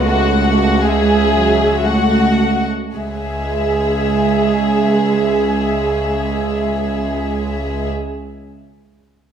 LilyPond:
<<
  \new Staff \with { instrumentName = "Violin section" } { \time 3/4 \key cis \minor \tempo 4 = 56 fis''4 e''4 fis''8 r8 | e''2.~ | e''2. | }
  \new Staff \with { instrumentName = "Violin section" } { \time 3/4 \key cis \minor fis'8 fis'8 gis'4 fis'8 r8 | gis'2.~ | gis'2. | }
  \new Staff \with { instrumentName = "Viola section" } { \clef bass \time 3/4 \key cis \minor a4 gis8 fis8 a8 r8 | gis2.~ | gis2. | }
  \new Staff \with { instrumentName = "Cello section" } { \clef bass \time 3/4 \key cis \minor cis,2~ cis,8 r8 | cis,2.~ | cis,2. | }
>>